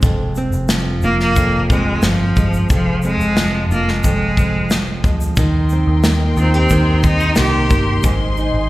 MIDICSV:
0, 0, Header, 1, 6, 480
1, 0, Start_track
1, 0, Tempo, 668151
1, 22, Time_signature, 4, 2, 24, 8
1, 6246, End_track
2, 0, Start_track
2, 0, Title_t, "String section"
2, 0, Program_c, 0, 48
2, 3861, Note_on_c, 0, 70, 77
2, 3861, Note_on_c, 0, 84, 97
2, 3863, Note_on_c, 0, 63, 93
2, 3868, Note_on_c, 0, 79, 78
2, 5761, Note_off_c, 0, 70, 0
2, 5763, Note_off_c, 0, 63, 0
2, 5765, Note_off_c, 0, 79, 0
2, 5780, Note_on_c, 0, 63, 87
2, 5782, Note_on_c, 0, 72, 79
2, 5782, Note_on_c, 0, 80, 78
2, 6246, Note_off_c, 0, 63, 0
2, 6246, Note_off_c, 0, 72, 0
2, 6246, Note_off_c, 0, 80, 0
2, 6246, Note_off_c, 0, 84, 0
2, 6246, End_track
3, 0, Start_track
3, 0, Title_t, "Cello"
3, 0, Program_c, 1, 42
3, 748, Note_on_c, 1, 58, 103
3, 857, Note_off_c, 1, 58, 0
3, 872, Note_on_c, 1, 58, 118
3, 1203, Note_off_c, 1, 58, 0
3, 1231, Note_on_c, 1, 56, 108
3, 1487, Note_on_c, 1, 53, 103
3, 1498, Note_off_c, 1, 56, 0
3, 1955, Note_off_c, 1, 53, 0
3, 1964, Note_on_c, 1, 53, 95
3, 2177, Note_off_c, 1, 53, 0
3, 2204, Note_on_c, 1, 56, 108
3, 2645, Note_off_c, 1, 56, 0
3, 2681, Note_on_c, 1, 58, 93
3, 2796, Note_on_c, 1, 56, 96
3, 2807, Note_off_c, 1, 58, 0
3, 3630, Note_off_c, 1, 56, 0
3, 4592, Note_on_c, 1, 60, 83
3, 4699, Note_off_c, 1, 60, 0
3, 4708, Note_on_c, 1, 60, 90
3, 5040, Note_off_c, 1, 60, 0
3, 5074, Note_on_c, 1, 63, 91
3, 5292, Note_off_c, 1, 63, 0
3, 5314, Note_on_c, 1, 67, 107
3, 5759, Note_off_c, 1, 67, 0
3, 6246, End_track
4, 0, Start_track
4, 0, Title_t, "Nylon-string guitar"
4, 0, Program_c, 2, 24
4, 0, Note_on_c, 2, 56, 68
4, 0, Note_on_c, 2, 60, 69
4, 0, Note_on_c, 2, 68, 75
4, 26, Note_on_c, 2, 41, 85
4, 268, Note_off_c, 2, 60, 0
4, 268, Note_on_c, 2, 60, 72
4, 507, Note_off_c, 2, 56, 0
4, 510, Note_on_c, 2, 53, 75
4, 744, Note_off_c, 2, 68, 0
4, 747, Note_on_c, 2, 65, 71
4, 979, Note_off_c, 2, 41, 0
4, 987, Note_on_c, 2, 41, 94
4, 1228, Note_off_c, 2, 60, 0
4, 1231, Note_on_c, 2, 60, 68
4, 1457, Note_off_c, 2, 53, 0
4, 1465, Note_on_c, 2, 53, 62
4, 1707, Note_on_c, 2, 56, 63
4, 1937, Note_off_c, 2, 41, 0
4, 1946, Note_on_c, 2, 41, 81
4, 2185, Note_off_c, 2, 60, 0
4, 2187, Note_on_c, 2, 60, 62
4, 2423, Note_off_c, 2, 53, 0
4, 2431, Note_on_c, 2, 53, 72
4, 2663, Note_off_c, 2, 65, 0
4, 2671, Note_on_c, 2, 65, 70
4, 2900, Note_off_c, 2, 41, 0
4, 2909, Note_on_c, 2, 41, 95
4, 3154, Note_off_c, 2, 60, 0
4, 3157, Note_on_c, 2, 60, 59
4, 3383, Note_off_c, 2, 53, 0
4, 3392, Note_on_c, 2, 53, 69
4, 3619, Note_off_c, 2, 56, 0
4, 3628, Note_on_c, 2, 56, 65
4, 3863, Note_off_c, 2, 53, 0
4, 3866, Note_on_c, 2, 51, 84
4, 3914, Note_off_c, 2, 41, 0
4, 3914, Note_off_c, 2, 56, 0
4, 3915, Note_off_c, 2, 65, 0
4, 4109, Note_off_c, 2, 60, 0
4, 4112, Note_on_c, 2, 60, 66
4, 4342, Note_on_c, 2, 58, 71
4, 4579, Note_on_c, 2, 65, 73
4, 4698, Note_off_c, 2, 65, 0
4, 4698, Note_on_c, 2, 67, 66
4, 4820, Note_off_c, 2, 51, 0
4, 4822, Note_on_c, 2, 51, 92
4, 5061, Note_off_c, 2, 60, 0
4, 5064, Note_on_c, 2, 60, 67
4, 5282, Note_off_c, 2, 58, 0
4, 5291, Note_on_c, 2, 58, 68
4, 5527, Note_off_c, 2, 58, 0
4, 5535, Note_on_c, 2, 58, 68
4, 5781, Note_on_c, 2, 44, 81
4, 5827, Note_off_c, 2, 58, 0
4, 5827, Note_off_c, 2, 67, 0
4, 6020, Note_off_c, 2, 60, 0
4, 6023, Note_on_c, 2, 63, 63
4, 6246, Note_off_c, 2, 44, 0
4, 6246, Note_off_c, 2, 51, 0
4, 6246, Note_off_c, 2, 63, 0
4, 6246, End_track
5, 0, Start_track
5, 0, Title_t, "Fingered electric bass"
5, 0, Program_c, 3, 33
5, 20, Note_on_c, 3, 29, 104
5, 353, Note_off_c, 3, 29, 0
5, 378, Note_on_c, 3, 29, 90
5, 712, Note_off_c, 3, 29, 0
5, 740, Note_on_c, 3, 29, 105
5, 962, Note_off_c, 3, 29, 0
5, 976, Note_on_c, 3, 29, 99
5, 1431, Note_off_c, 3, 29, 0
5, 1459, Note_on_c, 3, 31, 92
5, 1682, Note_off_c, 3, 31, 0
5, 1700, Note_on_c, 3, 31, 93
5, 1922, Note_off_c, 3, 31, 0
5, 1939, Note_on_c, 3, 29, 94
5, 2272, Note_off_c, 3, 29, 0
5, 2293, Note_on_c, 3, 29, 92
5, 2630, Note_off_c, 3, 29, 0
5, 2653, Note_on_c, 3, 29, 90
5, 2879, Note_off_c, 3, 29, 0
5, 2903, Note_on_c, 3, 29, 91
5, 3595, Note_off_c, 3, 29, 0
5, 3621, Note_on_c, 3, 38, 79
5, 3843, Note_off_c, 3, 38, 0
5, 3856, Note_on_c, 3, 39, 91
5, 4191, Note_off_c, 3, 39, 0
5, 4218, Note_on_c, 3, 39, 93
5, 4552, Note_off_c, 3, 39, 0
5, 4574, Note_on_c, 3, 39, 102
5, 4799, Note_off_c, 3, 39, 0
5, 4819, Note_on_c, 3, 39, 94
5, 5272, Note_off_c, 3, 39, 0
5, 5296, Note_on_c, 3, 36, 92
5, 5520, Note_off_c, 3, 36, 0
5, 5537, Note_on_c, 3, 31, 92
5, 5760, Note_off_c, 3, 31, 0
5, 5771, Note_on_c, 3, 32, 101
5, 6107, Note_off_c, 3, 32, 0
5, 6133, Note_on_c, 3, 32, 103
5, 6246, Note_off_c, 3, 32, 0
5, 6246, End_track
6, 0, Start_track
6, 0, Title_t, "Drums"
6, 16, Note_on_c, 9, 82, 89
6, 19, Note_on_c, 9, 36, 127
6, 88, Note_off_c, 9, 82, 0
6, 91, Note_off_c, 9, 36, 0
6, 255, Note_on_c, 9, 82, 48
6, 327, Note_off_c, 9, 82, 0
6, 378, Note_on_c, 9, 82, 52
6, 450, Note_off_c, 9, 82, 0
6, 495, Note_on_c, 9, 38, 112
6, 495, Note_on_c, 9, 82, 83
6, 566, Note_off_c, 9, 38, 0
6, 566, Note_off_c, 9, 82, 0
6, 731, Note_on_c, 9, 82, 43
6, 803, Note_off_c, 9, 82, 0
6, 861, Note_on_c, 9, 38, 44
6, 933, Note_off_c, 9, 38, 0
6, 976, Note_on_c, 9, 82, 80
6, 980, Note_on_c, 9, 36, 87
6, 1048, Note_off_c, 9, 82, 0
6, 1052, Note_off_c, 9, 36, 0
6, 1221, Note_on_c, 9, 36, 106
6, 1224, Note_on_c, 9, 82, 55
6, 1293, Note_off_c, 9, 36, 0
6, 1296, Note_off_c, 9, 82, 0
6, 1453, Note_on_c, 9, 82, 71
6, 1456, Note_on_c, 9, 38, 108
6, 1525, Note_off_c, 9, 82, 0
6, 1528, Note_off_c, 9, 38, 0
6, 1699, Note_on_c, 9, 82, 51
6, 1701, Note_on_c, 9, 36, 101
6, 1771, Note_off_c, 9, 82, 0
6, 1773, Note_off_c, 9, 36, 0
6, 1822, Note_on_c, 9, 82, 55
6, 1893, Note_off_c, 9, 82, 0
6, 1936, Note_on_c, 9, 82, 85
6, 1940, Note_on_c, 9, 36, 123
6, 2008, Note_off_c, 9, 82, 0
6, 2012, Note_off_c, 9, 36, 0
6, 2172, Note_on_c, 9, 82, 49
6, 2244, Note_off_c, 9, 82, 0
6, 2303, Note_on_c, 9, 82, 53
6, 2375, Note_off_c, 9, 82, 0
6, 2419, Note_on_c, 9, 38, 121
6, 2419, Note_on_c, 9, 82, 74
6, 2491, Note_off_c, 9, 38, 0
6, 2491, Note_off_c, 9, 82, 0
6, 2666, Note_on_c, 9, 82, 44
6, 2738, Note_off_c, 9, 82, 0
6, 2789, Note_on_c, 9, 38, 41
6, 2860, Note_off_c, 9, 38, 0
6, 2901, Note_on_c, 9, 82, 87
6, 2904, Note_on_c, 9, 36, 86
6, 2973, Note_off_c, 9, 82, 0
6, 2976, Note_off_c, 9, 36, 0
6, 3142, Note_on_c, 9, 36, 94
6, 3145, Note_on_c, 9, 82, 56
6, 3214, Note_off_c, 9, 36, 0
6, 3217, Note_off_c, 9, 82, 0
6, 3379, Note_on_c, 9, 82, 77
6, 3383, Note_on_c, 9, 38, 99
6, 3451, Note_off_c, 9, 82, 0
6, 3455, Note_off_c, 9, 38, 0
6, 3621, Note_on_c, 9, 36, 100
6, 3622, Note_on_c, 9, 82, 50
6, 3693, Note_off_c, 9, 36, 0
6, 3694, Note_off_c, 9, 82, 0
6, 3741, Note_on_c, 9, 82, 62
6, 3813, Note_off_c, 9, 82, 0
6, 3852, Note_on_c, 9, 82, 89
6, 3859, Note_on_c, 9, 36, 120
6, 3924, Note_off_c, 9, 82, 0
6, 3931, Note_off_c, 9, 36, 0
6, 4091, Note_on_c, 9, 82, 48
6, 4162, Note_off_c, 9, 82, 0
6, 4336, Note_on_c, 9, 38, 111
6, 4336, Note_on_c, 9, 82, 74
6, 4408, Note_off_c, 9, 38, 0
6, 4408, Note_off_c, 9, 82, 0
6, 4575, Note_on_c, 9, 82, 42
6, 4647, Note_off_c, 9, 82, 0
6, 4809, Note_on_c, 9, 82, 86
6, 4818, Note_on_c, 9, 36, 79
6, 4881, Note_off_c, 9, 82, 0
6, 4890, Note_off_c, 9, 36, 0
6, 5052, Note_on_c, 9, 82, 52
6, 5056, Note_on_c, 9, 36, 103
6, 5124, Note_off_c, 9, 82, 0
6, 5128, Note_off_c, 9, 36, 0
6, 5171, Note_on_c, 9, 82, 60
6, 5243, Note_off_c, 9, 82, 0
6, 5283, Note_on_c, 9, 82, 77
6, 5287, Note_on_c, 9, 38, 105
6, 5355, Note_off_c, 9, 82, 0
6, 5359, Note_off_c, 9, 38, 0
6, 5532, Note_on_c, 9, 82, 56
6, 5536, Note_on_c, 9, 36, 105
6, 5604, Note_off_c, 9, 82, 0
6, 5608, Note_off_c, 9, 36, 0
6, 5772, Note_on_c, 9, 82, 86
6, 5775, Note_on_c, 9, 36, 114
6, 5844, Note_off_c, 9, 82, 0
6, 5847, Note_off_c, 9, 36, 0
6, 6010, Note_on_c, 9, 82, 49
6, 6082, Note_off_c, 9, 82, 0
6, 6246, End_track
0, 0, End_of_file